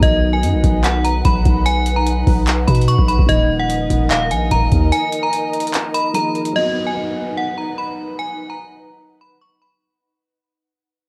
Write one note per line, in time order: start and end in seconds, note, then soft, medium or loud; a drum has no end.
0.00 0.45 B1 loud
0.00 3.24 D#3 medium
0.00 3.24 F#3 medium
0.00 3.25 B3 medium
0.00 3.25 D#4 medium
0.00 3.26 D#4 medium
0.00 3.26 B4 medium
0.00 0.31 D#5 loud
0.00 3.26 F#5 medium
0.00 kick loud
0.00 closed hi-hat medium
0.05 3.26 F#4 medium
0.33 0.81 G#5 medium
0.43 0.55 F#2 loud
0.43 closed hi-hat medium
0.54 0.63 B1 loud
0.64 1.23 B1 loud
0.64 kick medium
0.64 closed hi-hat medium
0.84 1.03 F#5 medium
0.84 clap loud
0.84 closed hi-hat medium
1.05 1.23 A#5 medium
1.05 closed hi-hat medium
1.25 1.45 B1 loud
1.25 1.63 B5 medium
1.25 kick loud
1.25 closed hi-hat medium
1.45 2.24 B1 loud
1.45 kick medium
1.45 closed hi-hat medium
1.66 1.95 G#5 loud
1.66 closed hi-hat medium
1.86 closed hi-hat medium
1.96 2.64 A#5 medium
2.07 closed hi-hat medium
2.27 2.66 B1 loud
2.27 kick medium
2.27 open hi-hat medium
2.47 clap loud
2.47 closed hi-hat medium
2.68 2.97 B2 loud
2.68 2.86 B5 medium
2.68 kick medium
2.68 closed hi-hat medium
2.75 closed hi-hat medium
2.81 closed hi-hat medium
2.88 3.07 C#6 medium
2.88 closed hi-hat medium
2.98 3.18 B1 loud
2.98 kick medium
3.08 3.27 B5 medium
3.08 closed hi-hat medium
3.19 3.28 B1 loud
3.19 kick medium
3.26 3.88 D#1 loud
3.26 6.09 D#3 medium
3.26 6.10 F3 medium
3.26 6.11 A#3 medium
3.26 6.52 D#4 medium
3.26 6.11 D#4 medium
3.26 6.52 A#4 medium
3.26 3.58 D#5 loud
3.26 6.52 D#5 medium
3.26 kick loud
3.26 closed hi-hat medium
3.60 4.08 F#5 medium
3.70 closed hi-hat medium
3.90 4.33 D#1 loud
3.90 kick medium
3.90 closed hi-hat medium
4.11 4.29 F5 medium
4.11 clap loud
4.11 closed hi-hat medium
4.31 4.50 A#1 loud
4.31 4.49 G#5 medium
4.31 closed hi-hat medium
4.51 4.71 D#1 loud
4.51 4.90 A#5 medium
4.51 kick loud
4.51 closed hi-hat medium
4.72 4.92 D#2 loud
4.72 kick medium
4.72 closed hi-hat medium
4.92 5.21 G#5 loud
4.92 closed hi-hat medium
5.12 closed hi-hat medium
5.23 5.90 A#5 medium
5.33 closed hi-hat medium
5.54 closed hi-hat soft
5.60 closed hi-hat medium
5.67 closed hi-hat medium
5.74 clap loud
5.74 closed hi-hat medium
5.94 6.13 B5 medium
5.94 closed hi-hat medium
6.13 6.55 D#3 medium
6.13 6.55 F3 medium
6.13 6.56 A#3 soft
6.13 6.55 D#4 medium
6.13 6.56 G#4 medium
6.13 6.33 A#5 medium
6.13 closed hi-hat medium
6.35 closed hi-hat soft
6.45 closed hi-hat medium
6.53 9.77 F#3 medium
6.53 9.78 B3 medium
6.53 9.79 D#4 medium
6.53 9.79 B4 medium
6.53 6.84 D#5 loud
6.53 9.79 F#5 medium
6.53 downlifter medium
6.58 9.79 F#4 medium
6.86 7.34 G#5 medium
7.37 7.56 F#5 medium
7.58 7.76 A#5 medium
7.78 8.16 B5 medium
8.19 8.48 G#5 loud
8.50 9.17 A#5 medium
9.21 9.39 B5 medium
9.41 9.60 C#6 medium
9.62 9.80 B5 medium